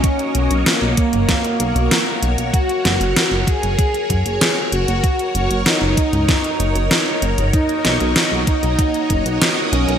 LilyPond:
<<
  \new Staff \with { instrumentName = "String machine" } { \time 4/4 \key b \major \tempo 4 = 96 << { <ais dis''>1 | r1 | r1 | <ais fis' dis''>1 | } \\ { <fis' ais' cis''>1~ | <fis' ais' cis''>1~ | <fis' ais' cis''>1~ | <fis' ais' cis''>1 | } >> }
  \new Staff \with { instrumentName = "Supersaw synth" } { \time 4/4 \key b \major cis'4 ais2. | fis'4. gis'2 fis'8~ | fis'4 dis'2. | dis'4. dis'2 cis'8 | }
  \new Staff \with { instrumentName = "Analog synth bass" } { \clef bass \time 4/4 \key b \major r8 b,,16 b,,16 r16 b,,16 r16 fis,,16 r8 b,,16 b,,16 r8 b,,16 b,,16 | r8 fis,,16 fis,,16 r16 fis,,16 r16 fis,,16 r8 fis,16 fis,,16 r8 fis,,16 fis,,16 | r8 fis,,16 fis,,16 r16 fis,,16 r16 cis,16 r8 fis,,16 fis,,16 r8 fis,,16 fis,,16 | r8 b,,16 b,,16 r16 b,,16 r16 b,,16 r8 fis,,16 b,,16 r8 b,,16 b,,16 | }
  \new DrumStaff \with { instrumentName = "Drums" } \drummode { \time 4/4 <hh bd>16 hh16 hh16 hh16 <hh sn>8 <hh bd>16 <hh toml>16 <hh bd sn>16 hh16 hh16 hh16 <hh sn>8 hh16 hh16 | <hh bd>16 hh16 <hh sn>16 hh16 <hh sn>8 <hh bd>16 hh16 <hh bd>16 hh16 <hh bd>16 hh16 <hh sn>8 hh16 hh16 | <hh bd>16 hh16 hh16 hh16 <hh sn>8 <hh bd>16 <hh toml>16 <hh bd sn>16 hh16 hh16 hh16 <hh sn>8 hh16 <hh toml>16 | <hh bd>16 hh16 <hh sn>16 hh16 <hh sn>8 <hh bd>16 hh16 <hh bd>16 hh16 <hh bd>16 hh16 <hh sn>8 hh16 hh16 | }
>>